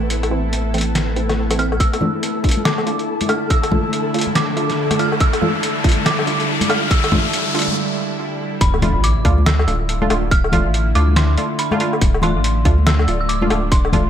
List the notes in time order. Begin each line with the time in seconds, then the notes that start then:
Already playing: A1 A3 B3 E4 A4 A5
0.10 closed hi-hat
0.23 closed hi-hat, low woodblock
0.31 E3 A3 C4
0.53 closed hi-hat
0.74 E3 A3 C4, closed hi-hat
0.78 closed hi-hat
0.81 closed hi-hat
0.95 snare, closed hi-hat
1.16 E3 A3 C4, closed hi-hat
1.29 snare, closed hi-hat, low woodblock
1.51 E3 A3 C4, closed hi-hat, low woodblock
1.59 E3 A3 C4 F6, closed hi-hat
1.72 low woodblock
1.80 D3 A3 E4 A4 E6, kick, closed hi-hat, riser
1.93 closed hi-hat, low woodblock
2.01 A3 D4 F4, high conga, low conga
2.23 closed hi-hat
2.44 A3 D4 F4, kick, closed hi-hat
2.49 closed hi-hat
2.51 closed hi-hat
2.57 high conga
2.65 D6, snare, closed hi-hat, low woodblock
2.78 low woodblock
2.86 A3 D4 F4, closed hi-hat
2.99 closed hi-hat
3.21 closed hi-hat, high conga
3.29 A3 D4 F4 F6, closed hi-hat, low woodblock
3.50 E6, kick, closed hi-hat
3.63 closed hi-hat, low woodblock
3.71 A3 D4 F4, kick, high conga, low conga
3.93 closed hi-hat
4.14 A3 D4 F4, closed hi-hat
4.19 closed hi-hat
4.21 closed hi-hat
4.27 high conga
4.35 D6, snare, closed hi-hat
4.57 A3 D4 F4, closed hi-hat
4.70 snare, closed hi-hat
4.91 closed hi-hat, high conga, low woodblock
4.99 A3 D4 F4 F6, closed hi-hat
5.12 low woodblock
5.20 G3 E6, kick, closed hi-hat
5.33 closed hi-hat, low woodblock
5.42 A3 D4 F4, high conga, low conga
5.63 closed hi-hat
5.84 A3 D4 F4, kick, closed hi-hat
5.89 closed hi-hat
5.92 closed hi-hat
5.96 high conga
6.06 D6, snare, closed hi-hat, low woodblock
6.19 low woodblock
6.27 A3 D4 F4, closed hi-hat
6.40 closed hi-hat
6.61 closed hi-hat, high conga
6.69 A3 D4 F4 F6, closed hi-hat, low woodblock
6.91 E6, kick, closed hi-hat
7.04 closed hi-hat, low woodblock
7.12 A3 D4 F4, kick, high conga, low conga
7.33 closed hi-hat
7.55 A3 D4 F4, closed hi-hat
7.59 closed hi-hat
7.62 closed hi-hat
7.68 high conga
8.61 D1 D3 A3 E4 B5, kick, closed hi-hat, impact
8.74 low woodblock
8.82 A3 D4 F4, closed hi-hat, high conga, low conga
8.95 A1
9.04 D6, closed hi-hat
9.25 D2 A3 D4 F4, kick, closed hi-hat
9.38 high conga
9.46 E6, snare, closed hi-hat, low woodblock
9.59 low woodblock
9.67 D1 A3 D4 F4, closed hi-hat
9.89 closed hi-hat
10.02 A3 D4 F4, high conga
10.10 D1 A3 D4 F4, closed hi-hat, low woodblock
10.31 F6, kick, closed hi-hat
10.44 low woodblock
10.52 A3 D4 F4, kick, closed hi-hat, high conga, low conga
10.66 A1
10.74 closed hi-hat
10.95 D2 A3 D4 F4 D6, closed hi-hat
11.08 high conga
11.16 C6, snare, closed hi-hat
11.38 A3 D4 F4, closed hi-hat
11.59 B5, closed hi-hat
11.71 A3 D4 F4, high conga, low woodblock
11.80 A3 D4 F4, closed hi-hat
11.93 low woodblock
12.01 D1 D4, kick, closed hi-hat
12.14 low woodblock
12.22 A3 D4 F4 C6, closed hi-hat, high conga, low conga
12.36 A1
12.44 closed hi-hat
12.65 D2 A3 D4 F4, kick, closed hi-hat
12.78 high conga
12.87 E6, snare, closed hi-hat, low woodblock
12.99 low woodblock
13.08 D1 A3 D4 F4, closed hi-hat
13.21 E6
13.29 D6, closed hi-hat
13.42 A3 D4 F4, high conga
13.50 D1 A3 D4 F4, closed hi-hat, low woodblock
13.72 C6, kick, closed hi-hat
13.85 low woodblock
13.93 A3 D4 F4, kick, closed hi-hat, high conga, low conga
14.06 A1